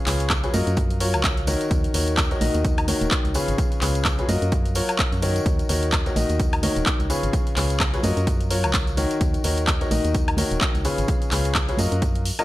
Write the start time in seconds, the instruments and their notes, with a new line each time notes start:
0.06 fm bass C#2, grand piano C#3 F4 G#4 B4 C#5, clap, open hi-hat, tambourine
0.20 closed hi-hat, tambourine
0.30 kick, clap, closed hi-hat, tambourine, high woodblock
0.43 grand piano F#3 F4 G#4 B4 C#5, closed hi-hat, tambourine
0.54 fm bass F#2, grand piano F#3 F4 F#4 A#4 D#5, open hi-hat, tambourine, high conga
0.67 fm bass F#2, closed hi-hat, tambourine
0.77 kick, closed hi-hat, tambourine
0.90 closed hi-hat, tambourine
1.00 grand piano F#3 F4 F#4 A#4 C#5, open hi-hat, tambourine
1.14 fm bass C#2, closed hi-hat, tambourine, high woodblock
1.24 kick, clap, closed hi-hat, tambourine
1.37 closed hi-hat, tambourine
1.47 fm bass C#2, grand piano D#3 D#4 F#4 A#4 C#5, open hi-hat, tambourine
1.61 closed hi-hat, tambourine
1.71 fm bass D#2, kick, closed hi-hat, tambourine
1.84 closed hi-hat, tambourine
1.94 fm bass D#2, grand piano D#3 D#4 F#4 A#4 C#5, open hi-hat, tambourine
2.08 closed hi-hat, tambourine
2.17 kick, clap, closed hi-hat, tambourine, high woodblock
2.31 grand piano D#3 D#4 F#4 A#4 C#5, closed hi-hat, tambourine
2.41 fm bass A#1, grand piano D#3 D#4 F#4 A#4 D#5, open hi-hat, tambourine, high conga
2.54 fm bass D#2, closed hi-hat, tambourine
2.65 kick, closed hi-hat, tambourine
2.78 closed hi-hat, tambourine, high woodblock
2.88 grand piano D#3 D#4 F#4 A#4 C#5, open hi-hat, tambourine, high conga
3.01 fm bass D#1, closed hi-hat, tambourine, high conga
3.11 kick, clap, closed hi-hat, tambourine
3.25 fm bass C#2, closed hi-hat, tambourine
3.34 grand piano C#3 F4 G#4 B4 C#5, open hi-hat, tambourine
3.48 fm bass G#1, closed hi-hat, tambourine
3.58 kick, closed hi-hat, tambourine
3.72 closed hi-hat, tambourine
3.81 fm bass C#2, grand piano C#3 F4 G#4 B4 C#5, clap, open hi-hat, tambourine
3.95 closed hi-hat, tambourine
4.05 kick, clap, closed hi-hat, tambourine, high woodblock
4.19 grand piano F#3 F4 G#4 B4 C#5, closed hi-hat, tambourine
4.29 fm bass F#2, grand piano F#3 F4 F#4 A#4 D#5, open hi-hat, tambourine, high conga
4.42 fm bass F#2, closed hi-hat, tambourine
4.52 kick, closed hi-hat, tambourine
4.66 closed hi-hat, tambourine
4.75 grand piano F#3 F4 F#4 A#4 C#5, open hi-hat, tambourine
4.89 closed hi-hat, tambourine, high woodblock
4.98 kick, clap, closed hi-hat, tambourine
5.12 fm bass F#2, closed hi-hat, tambourine
5.22 grand piano D#3 D#4 F#4 A#4 C#5, open hi-hat, tambourine
5.36 closed hi-hat, tambourine
5.46 fm bass D#2, kick, closed hi-hat, tambourine
5.59 closed hi-hat, tambourine
5.69 fm bass D#2, grand piano D#3 D#4 F#4 A#4 C#5, open hi-hat, tambourine
5.83 closed hi-hat
5.92 kick, clap, closed hi-hat, tambourine, high woodblock
6.06 grand piano D#3 D#4 F#4 A#4 C#5, closed hi-hat, tambourine
6.16 fm bass A#1, grand piano D#3 D#4 F#4 A#4 D#5, open hi-hat, tambourine, high conga
6.29 fm bass D#2, closed hi-hat, tambourine
6.40 kick, closed hi-hat, tambourine
6.53 closed hi-hat, tambourine, high woodblock
6.63 grand piano D#3 D#4 F#4 A#4 C#5, open hi-hat, tambourine, high conga
6.76 fm bass D#1, closed hi-hat, tambourine, high conga
6.86 kick, clap, closed hi-hat, tambourine
7.00 fm bass C#2, closed hi-hat, tambourine
7.10 grand piano C#3 F4 G#4 B4 C#5, open hi-hat, tambourine
7.23 fm bass G#1, closed hi-hat, tambourine
7.33 kick, closed hi-hat, tambourine
7.47 closed hi-hat, tambourine
7.56 fm bass C#2, grand piano C#3 F4 G#4 B4 C#5, clap, open hi-hat, tambourine
7.70 closed hi-hat, tambourine
7.80 kick, clap, closed hi-hat, tambourine, high woodblock
7.94 grand piano F#3 F4 G#4 B4 C#5, closed hi-hat, tambourine
8.03 fm bass F#2, grand piano F#3 F4 F#4 A#4 D#5, open hi-hat, tambourine, high conga
8.17 fm bass F#2, closed hi-hat, tambourine
8.27 kick, closed hi-hat, tambourine
8.41 closed hi-hat, tambourine
8.50 grand piano F#3 F4 F#4 A#4 C#5, open hi-hat, tambourine
8.64 fm bass C#2, closed hi-hat, tambourine, high woodblock
8.73 kick, clap, closed hi-hat, tambourine
8.87 closed hi-hat, tambourine
8.97 fm bass C#2, grand piano D#3 D#4 F#4 A#4 C#5, open hi-hat, tambourine
9.11 closed hi-hat, tambourine
9.21 fm bass D#2, kick, closed hi-hat, tambourine
9.34 closed hi-hat, tambourine
9.44 fm bass D#2, grand piano D#3 D#4 F#4 A#4 C#5, open hi-hat, tambourine
9.57 closed hi-hat, tambourine
9.67 kick, clap, closed hi-hat, tambourine, high woodblock
9.81 grand piano D#3 D#4 F#4 A#4 C#5, closed hi-hat, tambourine
9.91 fm bass A#1, grand piano D#3 D#4 F#4 A#4 D#5, open hi-hat, tambourine, high conga
10.05 fm bass D#2, closed hi-hat, tambourine
10.14 kick, closed hi-hat, tambourine
10.28 closed hi-hat, tambourine, high woodblock
10.37 grand piano D#3 D#4 F#4 A#4 C#5, open hi-hat, tambourine, high conga
10.51 fm bass D#1, closed hi-hat, tambourine, high conga
10.61 kick, clap, closed hi-hat, tambourine
10.75 fm bass C#2, closed hi-hat, tambourine
10.85 grand piano C#3 F4 G#4 B4 C#5, open hi-hat, tambourine
10.98 fm bass G#1, closed hi-hat, tambourine
11.08 kick, closed hi-hat, tambourine
11.22 closed hi-hat, tambourine
11.31 fm bass C#2, grand piano C#3 F4 G#4 B4 C#5, clap, open hi-hat, tambourine
11.45 closed hi-hat, tambourine
11.55 kick, clap, closed hi-hat, tambourine, high woodblock
11.69 grand piano F#3 F4 G#4 B4 C#5, closed hi-hat, tambourine
11.77 fm bass F#2, grand piano F#3 F4 F#4 A#4 D#5, open hi-hat, tambourine, high conga
11.91 fm bass F#2, closed hi-hat, tambourine
12.02 kick, closed hi-hat, tambourine
12.15 closed hi-hat, tambourine
12.25 open hi-hat, tambourine
12.39 grand piano F#3 F4 F#4 A#4 D#5, closed hi-hat, tambourine, high woodblock